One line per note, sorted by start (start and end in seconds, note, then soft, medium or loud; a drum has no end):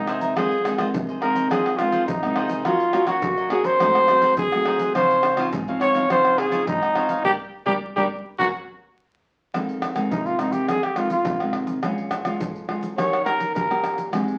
0.00 0.33 C3 medium
0.00 0.32 G#3 medium
0.00 0.32 A#3 medium
0.00 0.32 D#4 medium
0.07 0.21 G#4 medium
0.07 0.21 C5 medium
0.07 0.21 E5 medium
0.07 0.20 A#5 medium
0.07 pandeiro medium
0.07 tamborim medium
0.07 shaker medium
0.21 0.35 C5 soft
0.21 0.35 E5 soft
0.21 0.35 A#5 soft
0.21 pandeiro medium
0.21 shaker medium
0.21 surdo soft
0.35 0.90 F2 medium
0.35 0.53 D#3 medium
0.35 0.53 G#3 medium
0.35 0.53 C4 medium
0.35 0.62 F4 medium
0.35 0.62 G#4 medium
0.35 0.90 G#4 medium
0.35 0.63 C5 medium
0.35 0.64 D#5 medium
0.35 pandeiro medium
0.35 tamborim medium
0.35 shaker medium
0.35 surdo medium
0.51 pandeiro soft
0.51 shaker soft
0.64 0.74 D#3 soft
0.64 0.74 G#3 medium
0.64 0.75 C4 medium
0.64 0.77 F4 soft
0.64 0.77 G#4 medium
0.64 0.77 C5 soft
0.64 0.78 D#5 medium
0.64 pandeiro medium
0.64 tamborim medium
0.64 shaker medium
0.78 1.17 D#3 medium
0.78 1.17 G#3 medium
0.78 1.17 C4 medium
0.78 0.88 F4 medium
0.78 0.87 G#4 medium
0.78 0.88 C5 medium
0.78 0.88 D#5 medium
0.78 pandeiro medium
0.78 tamborim medium
0.78 shaker medium
0.78 surdo soft
0.93 1.48 C3 medium
0.93 pandeiro medium
0.93 shaker medium
0.93 surdo loud
1.08 1.21 G#4 soft
1.08 1.22 C5 soft
1.08 1.21 D#5 soft
1.08 pandeiro soft
1.08 shaker soft
1.21 1.75 D#3 medium
1.21 1.75 G#3 medium
1.21 1.75 C4 medium
1.21 1.35 F4 medium
1.21 1.35 G#4 medium
1.21 1.49 A#4 medium
1.21 1.35 C5 medium
1.21 1.34 D#5 medium
1.21 pandeiro medium
1.21 tamborim medium
1.35 1.50 G#4 soft
1.35 1.49 C5 soft
1.35 1.49 D#5 medium
1.35 pandeiro medium
1.35 shaker medium
1.35 surdo soft
1.50 2.05 F2 medium
1.50 1.77 F4 medium
1.50 1.79 G#4 medium
1.50 1.78 G#4 medium
1.50 1.79 C5 medium
1.50 1.79 D#5 medium
1.50 pandeiro medium
1.50 tamborim medium
1.50 shaker medium
1.50 surdo medium
1.66 pandeiro soft
1.66 tamborim medium
1.66 shaker soft
1.77 2.06 D#3 medium
1.77 2.06 G#3 medium
1.77 2.06 C4 medium
1.77 2.06 F4 medium
1.77 1.91 F4 soft
1.77 1.91 G#4 medium
1.77 1.91 C5 medium
1.77 1.92 D#5 medium
1.77 pandeiro medium
1.77 tamborim medium
1.77 shaker medium
1.92 2.02 F4 medium
1.92 2.02 G#4 medium
1.92 2.02 C5 medium
1.92 2.02 D#5 medium
1.92 pandeiro medium
1.92 shaker medium
1.92 surdo soft
2.07 2.63 C3 medium
2.07 2.67 D#4 medium
2.07 pandeiro medium
2.07 shaker medium
2.07 surdo loud
2.23 2.61 D#3 medium
2.23 2.62 G#3 medium
2.23 2.62 C4 medium
2.23 pandeiro soft
2.23 tamborim medium
2.23 shaker soft
2.35 2.49 F4 medium
2.35 2.50 G#4 medium
2.35 2.49 C5 medium
2.35 2.48 D#5 medium
2.35 pandeiro medium
2.35 tamborim medium
2.49 2.64 G#4 soft
2.49 2.64 C5 soft
2.49 2.64 D#5 soft
2.49 pandeiro medium
2.49 shaker medium
2.49 surdo soft
2.65 3.20 D#3 medium
2.65 2.82 A#3 medium
2.65 2.83 C#4 medium
2.65 3.09 F4 medium
2.65 2.92 F#4 medium
2.65 2.83 F#4 medium
2.65 2.93 A#4 medium
2.65 2.93 C#5 medium
2.65 2.94 D#5 medium
2.65 pandeiro medium
2.65 tamborim medium
2.65 shaker medium
2.65 surdo medium
2.80 pandeiro soft
2.80 shaker soft
2.93 3.03 A#3 medium
2.93 3.03 C#4 medium
2.93 3.06 F#4 soft
2.93 3.03 F#4 medium
2.93 3.06 A#4 medium
2.93 3.06 C#5 soft
2.93 3.07 D#5 medium
2.93 pandeiro medium
2.93 tamborim medium
2.93 shaker medium
3.07 3.46 A#3 medium
3.07 3.46 C#4 medium
3.07 3.17 F#4 medium
3.07 3.51 F#4 medium
3.07 3.47 F#4 medium
3.07 3.17 A#4 medium
3.07 3.17 C#5 medium
3.07 3.17 D#5 medium
3.07 pandeiro medium
3.07 tamborim medium
3.07 shaker medium
3.07 surdo soft
3.22 3.77 A#2 medium
3.22 pandeiro medium
3.22 shaker medium
3.22 surdo loud
3.37 3.50 A#4 soft
3.37 3.51 C#5 soft
3.37 3.51 D#5 soft
3.37 pandeiro soft
3.37 shaker soft
3.50 3.78 A#3 medium
3.50 3.78 C#4 medium
3.50 3.65 F#4 medium
3.50 3.78 F#4 medium
3.50 3.67 G#4 medium
3.50 3.65 A#4 medium
3.50 3.65 C#5 medium
3.50 3.64 D#5 medium
3.50 pandeiro medium
3.50 tamborim medium
3.50 surdo soft
3.64 3.80 A#4 soft
3.64 4.37 C5 loud
3.64 3.79 C#5 soft
3.64 3.79 D#5 soft
3.64 pandeiro medium
3.64 shaker medium
3.64 surdo soft
3.80 4.35 G#2 medium
3.80 4.04 F#3 medium
3.80 4.05 A3 medium
3.80 4.05 C4 medium
3.80 4.08 D#4 medium
3.80 4.09 G#4 medium
3.80 4.09 C5 medium
3.80 4.09 F#5 medium
3.80 pandeiro medium
3.80 tamborim medium
3.80 shaker medium
3.80 surdo medium
3.95 pandeiro soft
3.95 tamborim medium
3.95 shaker soft
4.08 4.47 F#3 medium
4.08 4.48 A3 medium
4.08 4.48 C4 medium
4.08 4.21 D#4 soft
4.08 4.22 G#4 medium
4.08 4.22 C5 medium
4.08 4.23 F#5 medium
4.08 pandeiro medium
4.08 tamborim medium
4.08 shaker medium
4.22 4.32 D#4 medium
4.22 4.32 G#4 medium
4.22 4.33 C5 medium
4.22 4.33 F#5 medium
4.22 pandeiro medium
4.22 shaker medium
4.22 surdo soft
4.37 4.92 D#3 medium
4.37 4.91 G#4 medium
4.37 pandeiro medium
4.37 shaker medium
4.37 surdo loud
4.52 4.91 F#3 medium
4.52 4.91 A3 medium
4.52 4.91 C4 medium
4.52 pandeiro soft
4.52 tamborim medium
4.52 shaker soft
4.65 4.80 D#4 medium
4.65 4.80 G#4 medium
4.65 4.80 C5 medium
4.65 4.79 F#5 medium
4.65 pandeiro medium
4.65 tamborim medium
4.79 4.95 G#4 soft
4.79 4.94 C5 soft
4.79 4.94 F#5 medium
4.79 pandeiro medium
4.79 shaker medium
4.79 surdo soft
4.95 5.50 C#3 medium
4.95 5.33 F3 medium
4.95 5.34 C4 medium
4.95 5.34 D#4 medium
4.95 5.22 F4 medium
4.95 5.49 C5 medium
4.95 5.23 C5 medium
4.95 5.24 C#5 medium
4.95 5.24 F5 medium
4.95 pandeiro medium
4.95 tamborim medium
4.95 shaker medium
4.95 surdo medium
5.10 pandeiro soft
5.10 shaker soft
5.23 5.37 F4 medium
5.23 5.37 C5 soft
5.23 5.37 C#5 medium
5.23 5.38 F5 medium
5.23 pandeiro medium
5.23 tamborim medium
5.37 5.62 F3 medium
5.37 5.62 C4 medium
5.37 5.62 D#4 medium
5.37 5.47 F4 medium
5.37 5.47 C5 medium
5.37 5.47 C#5 medium
5.37 5.48 F5 medium
5.37 pandeiro medium
5.37 tamborim medium
5.37 shaker medium
5.37 surdo soft
5.52 6.07 G#2 medium
5.52 pandeiro medium
5.52 shaker medium
5.52 surdo loud
5.68 5.92 F3 medium
5.68 5.92 C4 medium
5.68 5.92 D#4 medium
5.68 5.81 C5 soft
5.68 5.81 C#5 soft
5.68 5.81 F5 soft
5.68 pandeiro soft
5.68 shaker soft
5.81 5.95 F4 medium
5.81 5.95 C5 medium
5.81 6.08 C#5 loud
5.81 5.95 C#5 medium
5.81 5.94 F5 medium
5.81 pandeiro medium
5.81 tamborim medium
5.81 shaker medium
5.94 6.05 F3 medium
5.94 6.05 C4 medium
5.94 6.05 D#4 medium
5.94 6.09 C5 soft
5.94 6.09 C#5 soft
5.94 6.09 F5 medium
5.94 pandeiro medium
5.94 shaker medium
5.94 surdo soft
6.09 6.64 C#3 medium
6.09 6.48 F3 medium
6.09 6.49 C4 medium
6.09 6.49 D#4 medium
6.09 6.37 F4 medium
6.09 6.37 C5 medium
6.09 6.40 C5 loud
6.09 6.38 C#5 medium
6.09 6.38 F5 medium
6.09 pandeiro medium
6.09 tamborim medium
6.09 shaker medium
6.09 surdo medium
6.25 pandeiro soft
6.25 tamborim medium
6.25 shaker soft
6.38 6.50 F4 medium
6.38 6.67 G#4 medium
6.38 6.51 C5 soft
6.38 6.51 C#5 medium
6.38 6.51 F5 medium
6.38 pandeiro medium
6.38 tamborim medium
6.51 6.91 F3 medium
6.51 6.91 C4 medium
6.51 6.91 D#4 medium
6.51 6.61 F4 medium
6.51 6.61 C5 medium
6.51 6.62 C#5 medium
6.51 6.62 F5 medium
6.51 pandeiro medium
6.51 shaker medium
6.51 surdo soft
6.67 7.22 G#2 medium
6.67 7.21 D#4 medium
6.67 pandeiro medium
6.67 shaker medium
6.67 surdo loud
6.83 pandeiro soft
6.83 tamborim medium
6.83 shaker soft
6.95 7.13 F3 medium
6.95 7.13 C4 medium
6.95 7.13 D#4 medium
6.95 7.09 F4 medium
6.95 7.09 C5 medium
6.95 7.09 C#5 medium
6.95 7.08 F5 medium
6.95 pandeiro medium
6.95 tamborim medium
7.09 7.24 C5 soft
7.09 7.24 C#5 soft
7.09 7.23 F5 soft
7.09 pandeiro medium
7.09 shaker medium
7.09 surdo soft
7.24 7.34 G3 medium
7.24 7.34 A#3 medium
7.24 7.34 D4 medium
7.24 7.32 G4 medium
7.24 7.34 G4 medium
7.24 7.34 A#4 medium
7.24 7.34 D5 medium
7.24 surdo loud
7.66 7.76 G3 medium
7.66 7.76 A#3 medium
7.66 7.76 D4 medium
7.66 7.74 G4 medium
7.66 7.76 G4 medium
7.66 7.76 A#4 medium
7.66 7.76 D5 medium
7.66 surdo medium
7.96 8.06 G3 loud
7.96 8.06 A#3 loud
7.96 8.06 D4 loud
7.96 8.03 G4 medium
7.96 8.06 G4 medium
7.96 8.06 A#4 medium
7.96 8.06 D5 medium
7.96 surdo medium
8.38 8.49 F#3 medium
8.38 8.49 A#3 medium
8.38 8.49 C#4 medium
8.38 8.46 F#4 medium
8.38 8.49 F#4 loud
8.38 8.49 A#4 medium
8.38 8.49 C#5 medium
8.38 surdo loud
9.54 10.08 F2 medium
9.54 9.92 D#3 soft
9.54 9.92 G#3 soft
9.54 9.93 C4 medium
9.54 pandeiro medium
9.54 tamborim medium
9.54 shaker medium
9.54 surdo medium
9.69 pandeiro soft
9.69 shaker soft
9.82 pandeiro medium
9.82 tamborim medium
9.82 shaker medium
9.95 10.34 D#3 medium
9.95 10.35 G#3 medium
9.95 10.35 C4 medium
9.95 pandeiro medium
9.95 tamborim medium
9.95 shaker medium
9.95 surdo soft
10.11 10.66 C3 medium
10.11 10.27 D#4 medium
10.11 pandeiro medium
10.11 shaker medium
10.11 surdo loud
10.26 10.41 F4 medium
10.26 pandeiro soft
10.26 shaker soft
10.39 10.76 D#3 medium
10.39 10.77 G#3 medium
10.39 10.77 C4 medium
10.39 10.54 D#4 medium
10.39 pandeiro medium
10.39 tamborim medium
10.39 shaker medium
10.39 surdo soft
10.52 10.69 G4 medium
10.52 pandeiro medium
10.52 shaker medium
10.52 surdo soft
10.68 11.23 F2 medium
10.68 10.85 G#4 medium
10.68 pandeiro medium
10.68 tamborim medium
10.68 shaker medium
10.68 surdo medium
10.83 10.98 G4 medium
10.83 pandeiro soft
10.83 tamborim medium
10.83 shaker soft
10.96 11.14 D#3 medium
10.96 11.14 G#3 medium
10.96 11.14 C4 medium
10.96 11.11 F4 medium
10.96 pandeiro medium
10.96 tamborim medium
10.96 shaker medium
11.10 11.65 F4 medium
11.10 pandeiro medium
11.10 shaker medium
11.10 surdo soft
11.25 11.80 C3 medium
11.25 11.35 D#3 medium
11.25 11.35 G#3 medium
11.25 11.35 C4 medium
11.25 pandeiro medium
11.25 shaker medium
11.25 surdo loud
11.40 11.79 D#3 medium
11.40 11.79 G#3 medium
11.40 11.79 C4 medium
11.40 pandeiro soft
11.40 tamborim medium
11.40 shaker soft
11.53 pandeiro medium
11.53 tamborim medium
11.67 pandeiro medium
11.67 shaker medium
11.67 surdo soft
11.83 12.38 A#2 medium
11.83 12.22 G#3 medium
11.83 12.22 C#4 medium
11.83 12.22 F4 medium
11.83 pandeiro medium
11.83 tamborim medium
11.83 shaker medium
11.83 surdo medium
11.98 pandeiro soft
11.98 shaker soft
12.11 pandeiro medium
12.11 tamborim medium
12.11 shaker medium
12.25 12.64 G#3 medium
12.25 12.64 C#4 medium
12.25 12.65 F4 medium
12.25 pandeiro medium
12.25 tamborim medium
12.25 shaker medium
12.25 surdo soft
12.40 12.95 F2 medium
12.40 pandeiro medium
12.40 shaker medium
12.40 surdo loud
12.55 pandeiro soft
12.55 shaker soft
12.68 12.87 G#3 medium
12.68 12.87 C#4 medium
12.68 12.87 F4 medium
12.68 pandeiro medium
12.68 tamborim medium
12.83 pandeiro medium
12.83 shaker medium
12.83 surdo soft
12.97 13.52 D#3 medium
12.97 13.15 A#3 medium
12.97 13.15 C#4 medium
12.97 13.15 G4 medium
12.97 13.24 C#5 medium
12.97 pandeiro medium
12.97 tamborim medium
12.97 shaker medium
12.97 surdo medium
13.13 pandeiro soft
13.13 tamborim medium
13.13 shaker soft
13.25 13.43 A#3 medium
13.25 13.43 C#4 medium
13.25 13.43 G4 medium
13.25 13.53 A#4 medium
13.25 pandeiro medium
13.25 tamborim medium
13.25 shaker medium
13.40 pandeiro medium
13.40 shaker medium
13.40 surdo soft
13.55 14.10 A#2 medium
13.55 13.64 A#3 medium
13.55 13.64 C#4 medium
13.55 13.64 G4 medium
13.55 14.09 A#4 medium
13.55 pandeiro medium
13.55 shaker medium
13.55 surdo loud
13.70 14.08 A#3 medium
13.70 14.09 C#4 medium
13.70 14.09 G4 medium
13.70 pandeiro soft
13.70 tamborim medium
13.70 shaker soft
13.84 pandeiro medium
13.84 tamborim medium
13.84 shaker medium
13.98 pandeiro medium
13.98 shaker medium
13.98 surdo soft
14.12 14.38 G#3 medium
14.12 14.37 C4 medium
14.12 14.37 D#4 soft
14.12 14.37 G4 medium
14.12 pandeiro medium
14.12 tamborim medium
14.12 shaker medium
14.12 surdo medium
14.28 pandeiro soft
14.28 shaker soft